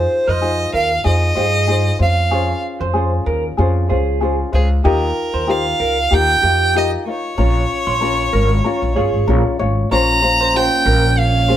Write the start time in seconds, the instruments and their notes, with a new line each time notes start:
Already playing: ukulele D#4 F4 G#4 C5, violin C5
0.27 upright bass F2, clean electric guitar C5, violin D#5
0.41 ukulele D#4 F4 G#4 C5
0.74 upright bass D#2, clean electric guitar A#4, violin F5
1.04 upright bass F2, ukulele D#4 F4 G#4 C5, violin D#5
1.35 upright bass G2, ukulele D#4 F4 C5, clean electric guitar G#4
1.67 ukulele D#4 F4 G#4 C5
1.99 upright bass F2, ukulele C#4 F4 C5, violin F5
2.31 ukulele C#4 F4 G#4 C5, clean electric guitar C#5
2.81 upright bass F2, clean electric guitar C5
2.93 ukulele C#4 F4 G#4 C5
3.26 upright bass D#2, clean electric guitar A#4
3.57 upright bass F2, ukulele C#4 F4 G#4 C5
3.89 upright bass C#2, ukulele C#4 F4 C5, clean electric guitar G#4
4.21 ukulele C#4 F4 G#4 C5
4.52 upright bass C#2, ukulele C#4 F4 C5, violin G#4
4.84 upright bass D#2, ukulele D#4 F4 G4 A#4, violin A#4, clean electric guitar D#5
5.34 upright bass D#2, clean electric guitar C5
5.47 ukulele D#4 F4 G4 A#4, violin F5
5.80 upright bass C#2, clean electric guitar A#4
6.11 upright bass D#2, ukulele D#4 F4 G4 A#4, violin G5
6.43 upright bass F2, ukulele D#4 F4 A#4, clean electric guitar G4
6.74 ukulele D#4 F4 G4 A#4, violin D#5
7.06 ukulele D#4 F4 A#4, violin C#5
7.38 upright bass A#1, ukulele C#4 F4 A#4 C#5, clean electric guitar C#5
7.87 upright bass A#1, clean electric guitar C6
8.01 ukulele C#4 F4 A#4 C#5
8.33 upright bass G#1, clean electric guitar A#4
8.64 ukulele C#4 F4 A#4 C#5
8.82 upright bass A#1
8.96 upright bass G1, ukulele C#4 F4 C#5, clean electric guitar G#4
9.13 upright bass G#1
9.27 upright bass A#1, ukulele C#4 F4 A#4 C#5
9.59 upright bass G#1, ukulele C#4 F4 C#5
9.91 upright bass A#1, string section A#2 A#3 C#4, ukulele C#4 F4 A#4 C5, clean electric guitar C#5, violin A#5
10.22 ukulele C#4 F4 C5
10.41 clean electric guitar C5
10.54 ukulele C#4 F4 A#4 C5, violin G5
10.86 upright bass A#1, clean electric guitar A#4
11.19 violin F5
11.48 ukulele C#4 F4 C5, clean electric guitar G#4